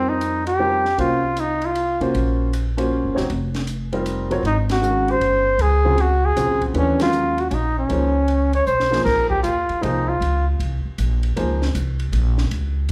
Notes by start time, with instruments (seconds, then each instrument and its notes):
Already playing: upright bass F2, grand piano G3 C4 D#4 F4 A#4, muted trumpet C4
0.09 muted trumpet D#4
0.21 hi-hat pedal, ride
0.47 muted trumpet G4, ride
0.59 grand piano G3 C4 D#4 F4 A#4
0.85 snare
0.98 upright bass C2, grand piano A#3 C#4 F4 F#4 C5, muted trumpet F4, ride
1.37 muted trumpet D#4, hi-hat pedal, ride
1.62 ride
1.66 muted trumpet F4
1.75 ride
2.01 upright bass C3, grand piano A#3 C#4 F4 F#4 C5, ride
2.14 upright bass A#1, ride
2.53 hi-hat pedal, ride
2.77 grand piano A#3 C#4 F4 F#4 C5, ride
3.04 upright bass G1
3.15 upright bass E1, grand piano C4 D#4 F#4 G4 C#5, snare
3.30 upright bass F1, ride
3.54 snare, ride
3.67 hi-hat pedal, ride
3.93 grand piano G3 C4 D#4 F4 A#4, ride
4.06 hi-hat pedal, ride
4.30 grand piano F#3 C4 F4 A#4 C#5, ride
4.43 upright bass G#1, muted trumpet D#4, ride
4.69 muted trumpet F#4, snare, ride
4.81 grand piano D#3 G#3 C#4 F#4 A#4, hi-hat pedal
5.08 muted trumpet C5, ride
5.20 upright bass G1, ride
5.58 upright bass C#2, muted trumpet G#4, ride
5.85 grand piano C#3 F#3 C4 F4 G#4
5.98 muted trumpet F#4, ride
6.25 muted trumpet G#4
6.36 upright bass A#1, grand piano C#3 F#3 C4 F4 G#4, hi-hat pedal, ride
6.62 kick, ride
6.74 upright bass D#2, grand piano E3 A3 D4 G4 B4, ride
6.78 muted trumpet C#4
7.00 grand piano D#3 F#3 G#3 C#4 A#4, muted trumpet F4, snare, ride
7.12 hi-hat pedal
7.38 muted trumpet F#4, ride
7.50 upright bass A#1, muted trumpet C#4 D#4, ride
7.79 muted trumpet C#4
7.89 upright bass C#2, grand piano F3 A#3 D#4 G#4 C5, ride
8.28 ride
8.53 muted trumpet C#5, ride
8.66 upright bass B1, muted trumpet C5, hi-hat pedal
8.80 snare
8.91 grand piano F3 A#3 D#4 G#4 C5, snare
9.04 upright bass A#1, muted trumpet A#4, kick, snare, crash
9.30 muted trumpet G4, kick
9.43 upright bass D#2, muted trumpet F4, hi-hat pedal, ride
9.69 muted upright bass stroke, ride
9.81 upright bass C2, grand piano F3 A#3 D#4 G#4 C5, muted trumpet D#4, ride
10.09 muted trumpet F4
10.21 upright bass C#2, ride
10.59 upright bass C2, ride
10.85 muted upright bass stroke
10.98 upright bass A#1, hi-hat pedal, ride
11.23 ride
11.36 upright bass C#2, grand piano F3 A#3 D#4 G#4 C5, ride
11.62 snare
11.75 upright bass C2, hi-hat pedal, ride
12.00 ride
12.12 upright bass A#1, ride
12.38 snare
12.51 upright bass C#2, ride
12.89 hi-hat pedal, ride